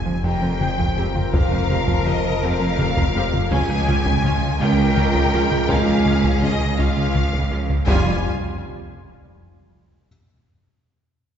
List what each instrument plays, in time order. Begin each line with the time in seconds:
Already playing: double bass section F1, sub bass F1, cello section F2, french horn section F3 F4, violin section G#5
0.06 analog synth bass F3
0.24 double bass section F1, analog synth bass F2, cello section F2, synth arpeggio sound F3, viola section C4 G4, violin section A#4 G5, felt piano G5
0.42 analog synth bass F3, synth arpeggio sound C4
0.61 analog synth bass F2, viola section C4 G5, violin section G#4, taiko mid
0.78 analog synth bass F2, synth arpeggio sound F3, taiko
0.97 analog synth bass F2, synth arpeggio sound G#3, viola section C4 G4, violin section A#4
1.15 analog synth bass F2, synth arpeggio sound F4, taiko mid
1.33 double bass section F1, cello section F2, analog synth bass F2, synth arpeggio sound F3, viola section C4 G4, violin section F5, taiko
1.52 analog synth bass F2, synth arpeggio sound G#3, taiko rim
1.70 analog synth bass F2, synth arpeggio sound G#3, viola section C4 G4, taiko mid
1.88 analog synth bass F2, synth arpeggio sound F3, taiko
2.06 analog synth bass F2, viola section C4 G4, synth arpeggio sound F4, violin section D#5, taiko mid
2.25 analog synth bass F3
2.43 double bass section F1, analog synth bass F2, cello section F2, synth arpeggio sound F3, viola section C4 G4, violin section F5
2.61 analog synth bass F3, synth arpeggio sound C4
2.79 analog synth bass F2, viola section C4 G4, taiko mid
2.97 analog synth bass F2, synth arpeggio sound F3, taiko
3.15 analog synth bass F2, synth arpeggio sound G#3, viola section C4 G4
3.33 analog synth bass F2, synth arpeggio sound F4, taiko mid
3.51 sub bass C#2, cello section C#2, double bass section C#2, analog synth bass C#2, synth arpeggio sound C#3, french horn section G#3 F4, viola section C#4 F4, violin section G#4 G#5, taiko
3.70 analog synth bass C#2, synth arpeggio sound F3, taiko rim
3.88 analog synth bass C#2, synth arpeggio sound F3, viola section C#4 F4, violin section G4, taiko mid
4.05 analog synth bass C#2, synth arpeggio sound C#3, taiko
4.24 analog synth bass C#2, synth arpeggio sound C#4, viola section C#4 F4, violin section F4, taiko mid
4.43 analog synth bass C#3
4.60 cello section C#2, analog synth bass C#2, double bass section C#2, synth arpeggio sound C#3, viola section C#4 F4, violin section A#4 G5
4.78 analog synth bass C#3, synth arpeggio sound G#3
4.97 analog synth bass C#2, viola section C#4 F4, taiko mid
5.15 analog synth bass C#2, synth arpeggio sound C#3, taiko
5.33 analog synth bass C#2, synth arpeggio sound F3, viola section C#4 F4
5.51 analog synth bass C#2, synth arpeggio sound C#4, taiko mid
5.69 cello section C#2, analog synth bass C#2, double bass section C#2, synth arpeggio sound C#3, viola section C#4 F4, violin section G#4 F5, felt piano A#4 A#5, taiko
5.88 analog synth bass C#2, synth arpeggio sound F3
6.06 analog synth bass C#2, synth arpeggio sound F3, viola section C#4 F4, taiko mid
6.24 analog synth bass C#2, synth arpeggio sound C#3, taiko
6.42 analog synth bass C#2, viola section C#4 F4, synth arpeggio sound C#4, violin section D#5, taiko mid
6.61 analog synth bass C#3
6.78 cello section C#2, double bass section C#2, analog synth bass C#2, synth arpeggio sound C#3, viola section C#4 F4, violin section F4 F5
6.97 analog synth bass C#3, synth arpeggio sound G#3
7.14 analog synth bass C#2, viola section C#4 F4, taiko mid
7.33 analog synth bass C#2, synth arpeggio sound C#3, taiko
7.51 analog synth bass C#2, synth arpeggio sound F3, viola section C#4 F4
7.69 analog synth bass C#2, synth arpeggio sound C#4, taiko mid
7.87 sub bass F1, double bass section F1, cello section F2, viola section G3 F4, french horn section G3 F4, violin section F4 F5 G#5, taiko